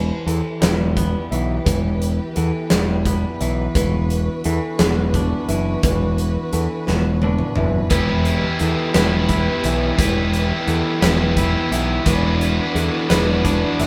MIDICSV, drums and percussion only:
0, 0, Header, 1, 2, 480
1, 0, Start_track
1, 0, Key_signature, 1, "minor"
1, 0, Tempo, 693642
1, 1153, Time_signature, 6, 3, 24, 8
1, 9596, End_track
2, 0, Start_track
2, 0, Title_t, "Drums"
2, 191, Note_on_c, 9, 42, 47
2, 260, Note_off_c, 9, 42, 0
2, 428, Note_on_c, 9, 38, 87
2, 428, Note_on_c, 9, 42, 68
2, 497, Note_off_c, 9, 38, 0
2, 497, Note_off_c, 9, 42, 0
2, 670, Note_on_c, 9, 36, 62
2, 673, Note_on_c, 9, 42, 54
2, 739, Note_off_c, 9, 36, 0
2, 742, Note_off_c, 9, 42, 0
2, 914, Note_on_c, 9, 42, 54
2, 984, Note_off_c, 9, 42, 0
2, 1152, Note_on_c, 9, 36, 85
2, 1153, Note_on_c, 9, 42, 75
2, 1221, Note_off_c, 9, 36, 0
2, 1222, Note_off_c, 9, 42, 0
2, 1395, Note_on_c, 9, 42, 52
2, 1465, Note_off_c, 9, 42, 0
2, 1632, Note_on_c, 9, 42, 53
2, 1701, Note_off_c, 9, 42, 0
2, 1870, Note_on_c, 9, 38, 88
2, 1870, Note_on_c, 9, 42, 80
2, 1939, Note_off_c, 9, 38, 0
2, 1939, Note_off_c, 9, 42, 0
2, 2114, Note_on_c, 9, 36, 62
2, 2115, Note_on_c, 9, 42, 55
2, 2183, Note_off_c, 9, 36, 0
2, 2185, Note_off_c, 9, 42, 0
2, 2357, Note_on_c, 9, 42, 63
2, 2426, Note_off_c, 9, 42, 0
2, 2597, Note_on_c, 9, 36, 88
2, 2600, Note_on_c, 9, 42, 79
2, 2666, Note_off_c, 9, 36, 0
2, 2669, Note_off_c, 9, 42, 0
2, 2839, Note_on_c, 9, 42, 53
2, 2908, Note_off_c, 9, 42, 0
2, 3074, Note_on_c, 9, 42, 53
2, 3143, Note_off_c, 9, 42, 0
2, 3315, Note_on_c, 9, 38, 90
2, 3315, Note_on_c, 9, 42, 71
2, 3384, Note_off_c, 9, 38, 0
2, 3384, Note_off_c, 9, 42, 0
2, 3556, Note_on_c, 9, 36, 63
2, 3558, Note_on_c, 9, 42, 52
2, 3626, Note_off_c, 9, 36, 0
2, 3627, Note_off_c, 9, 42, 0
2, 3797, Note_on_c, 9, 42, 58
2, 3866, Note_off_c, 9, 42, 0
2, 4035, Note_on_c, 9, 42, 67
2, 4037, Note_on_c, 9, 36, 89
2, 4105, Note_off_c, 9, 42, 0
2, 4107, Note_off_c, 9, 36, 0
2, 4278, Note_on_c, 9, 42, 50
2, 4348, Note_off_c, 9, 42, 0
2, 4516, Note_on_c, 9, 42, 51
2, 4585, Note_off_c, 9, 42, 0
2, 4755, Note_on_c, 9, 38, 53
2, 4824, Note_off_c, 9, 38, 0
2, 4994, Note_on_c, 9, 48, 65
2, 5063, Note_off_c, 9, 48, 0
2, 5110, Note_on_c, 9, 47, 55
2, 5179, Note_off_c, 9, 47, 0
2, 5228, Note_on_c, 9, 45, 77
2, 5298, Note_off_c, 9, 45, 0
2, 5468, Note_on_c, 9, 42, 69
2, 5472, Note_on_c, 9, 36, 91
2, 5538, Note_off_c, 9, 42, 0
2, 5542, Note_off_c, 9, 36, 0
2, 5710, Note_on_c, 9, 42, 55
2, 5780, Note_off_c, 9, 42, 0
2, 5947, Note_on_c, 9, 42, 53
2, 6016, Note_off_c, 9, 42, 0
2, 6189, Note_on_c, 9, 38, 95
2, 6189, Note_on_c, 9, 42, 79
2, 6259, Note_off_c, 9, 38, 0
2, 6259, Note_off_c, 9, 42, 0
2, 6427, Note_on_c, 9, 42, 58
2, 6430, Note_on_c, 9, 36, 64
2, 6496, Note_off_c, 9, 42, 0
2, 6499, Note_off_c, 9, 36, 0
2, 6669, Note_on_c, 9, 42, 60
2, 6738, Note_off_c, 9, 42, 0
2, 6910, Note_on_c, 9, 36, 97
2, 6913, Note_on_c, 9, 42, 82
2, 6979, Note_off_c, 9, 36, 0
2, 6982, Note_off_c, 9, 42, 0
2, 7152, Note_on_c, 9, 42, 55
2, 7221, Note_off_c, 9, 42, 0
2, 7388, Note_on_c, 9, 42, 53
2, 7457, Note_off_c, 9, 42, 0
2, 7629, Note_on_c, 9, 38, 90
2, 7629, Note_on_c, 9, 42, 80
2, 7698, Note_off_c, 9, 38, 0
2, 7698, Note_off_c, 9, 42, 0
2, 7866, Note_on_c, 9, 42, 56
2, 7867, Note_on_c, 9, 36, 68
2, 7936, Note_off_c, 9, 42, 0
2, 7937, Note_off_c, 9, 36, 0
2, 8112, Note_on_c, 9, 42, 53
2, 8181, Note_off_c, 9, 42, 0
2, 8344, Note_on_c, 9, 42, 77
2, 8347, Note_on_c, 9, 36, 90
2, 8414, Note_off_c, 9, 42, 0
2, 8416, Note_off_c, 9, 36, 0
2, 8588, Note_on_c, 9, 42, 54
2, 8658, Note_off_c, 9, 42, 0
2, 8829, Note_on_c, 9, 42, 50
2, 8899, Note_off_c, 9, 42, 0
2, 9065, Note_on_c, 9, 38, 88
2, 9065, Note_on_c, 9, 42, 70
2, 9134, Note_off_c, 9, 38, 0
2, 9134, Note_off_c, 9, 42, 0
2, 9305, Note_on_c, 9, 36, 65
2, 9306, Note_on_c, 9, 42, 54
2, 9374, Note_off_c, 9, 36, 0
2, 9375, Note_off_c, 9, 42, 0
2, 9547, Note_on_c, 9, 42, 54
2, 9596, Note_off_c, 9, 42, 0
2, 9596, End_track
0, 0, End_of_file